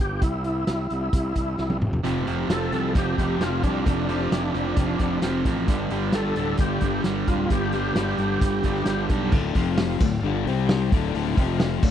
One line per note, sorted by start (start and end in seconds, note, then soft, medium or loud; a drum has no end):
0.00 0.20 G1 medium
0.00 0.23 G4 medium
0.22 0.64 C2 medium
0.22 1.78 E4 medium
0.22 kick loud
0.22 closed hi-hat medium
0.44 closed hi-hat medium
0.67 0.89 C2 medium
0.67 snare loud
0.67 closed hi-hat medium
0.90 1.11 C2 medium
0.90 closed hi-hat medium
1.13 1.34 C2 medium
1.13 kick loud
1.13 closed hi-hat medium
1.35 1.57 C2 medium
1.35 kick medium
1.35 closed hi-hat medium
1.57 1.80 C2 medium
1.57 snare soft
1.70 high tom soft
1.81 2.02 F1 medium
1.81 mid tom medium
1.93 floor tom medium
2.03 2.25 F1 medium
2.03 2.26 F2 medium
2.03 2.26 C3 medium
2.03 2.26 F3 medium
2.03 closed hi-hat medium
2.26 2.47 F1 medium
2.26 2.49 F2 medium
2.26 2.49 C3 medium
2.26 2.50 F3 medium
2.26 closed hi-hat medium
2.48 2.70 F1 medium
2.48 2.72 F2 medium
2.48 2.72 C3 medium
2.48 2.73 F3 medium
2.48 snare loud
2.48 closed hi-hat medium
2.52 2.93 A4 medium
2.72 2.93 C2 medium
2.72 2.95 F2 medium
2.72 2.96 C3 medium
2.72 2.96 F3 medium
2.72 closed hi-hat medium
2.95 3.16 F1 medium
2.95 3.19 F2 medium
2.95 3.19 C3 medium
2.95 3.19 F3 medium
2.95 3.44 G4 medium
2.95 kick loud
2.95 closed hi-hat medium
3.18 3.39 F1 medium
3.18 3.40 F2 medium
3.18 3.41 C3 medium
3.18 3.41 F3 medium
3.18 kick medium
3.18 closed hi-hat medium
3.39 3.61 F1 medium
3.39 3.63 F2 medium
3.39 3.63 C3 medium
3.39 3.64 F3 medium
3.39 3.62 F4 medium
3.39 snare medium
3.39 closed hi-hat medium
3.63 3.84 C2 medium
3.63 3.85 F2 medium
3.63 3.86 C3 medium
3.63 3.86 F3 medium
3.63 3.85 D4 medium
3.63 kick medium
3.63 closed hi-hat medium
3.86 4.28 F1 medium
3.86 4.08 F2 medium
3.86 4.08 C3 medium
3.86 4.09 F3 medium
3.86 5.19 D4 medium
3.86 kick medium
3.86 closed hi-hat medium
4.09 4.30 F2 medium
4.09 4.31 C3 medium
4.09 4.32 F3 medium
4.09 closed hi-hat medium
4.31 4.52 F1 medium
4.31 4.54 F2 medium
4.31 4.54 C3 medium
4.31 4.55 F3 medium
4.31 snare loud
4.31 closed hi-hat medium
4.55 4.76 F1 medium
4.55 4.76 F2 medium
4.55 4.77 C3 medium
4.55 4.77 F3 medium
4.55 closed hi-hat medium
4.77 4.98 F1 medium
4.77 4.98 F2 medium
4.77 4.99 C3 medium
4.77 4.99 F3 medium
4.77 kick loud
4.77 closed hi-hat medium
4.99 5.21 F1 medium
4.99 5.21 F2 medium
4.99 5.21 C3 medium
4.99 5.22 F3 medium
4.99 kick medium
4.99 closed hi-hat medium
5.22 5.43 F1 medium
5.22 5.44 F2 medium
5.22 5.44 C3 medium
5.22 5.44 F3 loud
5.22 snare medium
5.22 closed hi-hat medium
5.45 5.67 A1 medium
5.45 5.67 F2 medium
5.45 5.67 C3 medium
5.45 5.67 F3 loud
5.45 kick medium
5.45 closed hi-hat medium
5.56 snare soft
5.68 5.89 G1 medium
5.68 5.90 G2 medium
5.68 5.89 D3 medium
5.68 5.90 G3 loud
5.68 kick loud
5.68 closed hi-hat medium
5.90 6.12 G1 medium
5.90 6.13 G2 medium
5.90 6.12 D3 medium
5.90 6.13 G3 medium
5.90 closed hi-hat medium
6.12 6.35 G1 medium
6.12 6.37 G2 medium
6.12 6.36 D3 medium
6.12 6.38 G3 loud
6.12 6.57 A4 loud
6.12 snare loud
6.12 closed hi-hat medium
6.36 6.58 D1 medium
6.36 6.59 G2 medium
6.36 6.59 D3 medium
6.36 6.59 G3 medium
6.36 closed hi-hat medium
6.57 6.80 G1 medium
6.57 6.82 G2 medium
6.57 6.83 D3 medium
6.57 6.83 G3 loud
6.57 7.02 G4 medium
6.57 kick loud
6.57 closed hi-hat medium
6.81 7.03 G1 medium
6.81 7.04 G2 medium
6.81 7.05 D3 medium
6.81 7.05 G3 medium
6.81 kick medium
6.81 closed hi-hat medium
7.04 7.26 G1 medium
7.04 7.27 G2 medium
7.04 7.28 D3 medium
7.04 7.28 G3 medium
7.04 snare loud
7.04 closed hi-hat medium
7.28 7.49 D1 medium
7.28 7.51 G2 medium
7.28 7.51 D3 medium
7.28 7.51 G3 medium
7.28 7.52 F4 medium
7.28 kick medium
7.28 closed hi-hat medium
7.50 7.93 G1 medium
7.50 7.72 G2 medium
7.50 7.72 D3 medium
7.50 7.73 G3 loud
7.50 9.07 G4 loud
7.50 kick medium
7.50 closed hi-hat medium
7.72 7.94 G2 medium
7.72 7.94 D3 medium
7.72 7.95 G3 medium
7.72 closed hi-hat medium
7.95 8.17 G1 medium
7.95 8.17 G2 medium
7.95 8.18 D3 medium
7.95 8.18 G3 loud
7.95 snare loud
7.95 closed hi-hat medium
8.18 8.39 G1 medium
8.18 8.41 G2 medium
8.18 8.41 D3 medium
8.18 8.41 G3 medium
8.18 closed hi-hat medium
8.41 8.63 G1 medium
8.41 8.63 G2 medium
8.41 8.64 D3 medium
8.41 8.64 G3 loud
8.41 kick loud
8.41 closed hi-hat medium
8.63 8.85 G1 medium
8.63 8.85 G2 medium
8.63 8.86 D3 medium
8.63 8.87 G3 medium
8.63 kick medium
8.63 closed hi-hat medium
8.75 snare soft
8.86 9.08 G1 medium
8.86 9.09 G2 medium
8.86 9.09 D3 medium
8.86 9.10 G3 medium
8.86 snare medium
8.86 closed hi-hat medium
9.09 9.31 B1 medium
9.09 9.32 G2 medium
9.09 9.32 D3 medium
9.09 9.32 G3 medium
9.09 kick medium
9.09 closed hi-hat medium
9.32 9.54 D1 medium
9.32 9.55 D2 loud
9.32 9.55 A2 loud
9.32 9.55 D3 loud
9.32 kick loud
9.32 crash loud
9.55 9.98 F1 medium
9.55 10.00 F2 medium
9.55 10.01 C3 medium
9.55 10.02 F3 loud
9.55 10.01 C4 medium
9.55 10.01 F4 medium
9.55 9.99 F5 medium
9.55 kick medium
9.55 open hi-hat medium
9.78 snare loud
9.78 open hi-hat medium
10.00 10.22 D1 medium
10.00 10.19 D2 medium
10.00 10.20 A2 medium
10.00 10.46 D4 medium
10.00 10.46 A4 medium
10.00 10.46 F5 medium
10.00 kick loud
10.00 crash medium
10.22 10.44 G1 loud
10.22 10.46 G2 loud
10.22 10.46 D3 loud
10.22 10.47 G3 medium
10.46 10.88 C2 loud
10.46 10.92 C3 medium
10.46 10.92 G3 loud
10.46 10.91 C4 medium
10.46 10.92 C4 medium
10.46 10.91 G4 medium
10.46 10.91 G5 medium
10.46 open hi-hat medium
10.69 snare loud
10.69 open hi-hat medium
10.90 11.13 D1 medium
10.90 11.13 D2 loud
10.90 11.14 A2 loud
10.90 11.14 D3 loud
10.90 11.36 D4 medium
10.90 11.36 A4 medium
10.90 11.34 F5 medium
10.90 kick loud
10.90 open hi-hat medium
11.14 11.36 D1 medium
11.14 11.37 D2 loud
11.14 11.37 A2 loud
11.14 11.37 D3 loud
11.14 open hi-hat medium
11.35 11.80 F1 medium
11.35 11.82 F2 medium
11.35 11.82 C3 loud
11.35 11.83 F3 loud
11.35 11.81 C4 medium
11.35 11.82 F4 medium
11.35 11.81 F5 medium
11.35 kick medium
11.35 open hi-hat medium
11.60 snare loud
11.60 open hi-hat medium
11.82 11.91 D1 medium
11.82 11.91 D2 medium
11.82 11.91 A2 medium
11.82 11.91 D4 medium
11.82 11.91 A4 medium
11.82 11.91 F5 medium
11.82 kick loud
11.82 crash medium